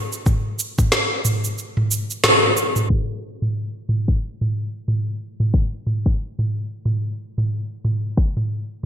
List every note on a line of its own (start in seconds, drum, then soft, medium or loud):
0.13 shaker soft
0.26 kick loud
0.26 mid tom medium
0.26 shaker soft
0.59 shaker medium
0.78 kick loud
0.78 mid tom medium
0.78 shaker soft
0.92 snare loud
0.92 shaker soft
1.25 mid tom medium
1.25 shaker medium
1.44 shaker soft
1.58 shaker soft
1.77 mid tom medium
1.91 shaker medium
2.10 shaker soft
2.24 snare loud
2.24 mid tom medium
2.24 shaker soft
2.57 shaker medium
2.76 mid tom medium
2.76 shaker soft
2.90 kick loud
2.90 mid tom medium
3.42 mid tom medium
3.89 mid tom medium
4.08 kick medium
4.41 mid tom medium
4.88 mid tom medium
5.40 mid tom medium
5.54 kick loud
5.87 mid tom medium
6.06 kick medium
6.39 mid tom medium
6.85 mid tom medium
7.38 mid tom medium
7.85 mid tom medium
8.17 kick loud
8.37 mid tom medium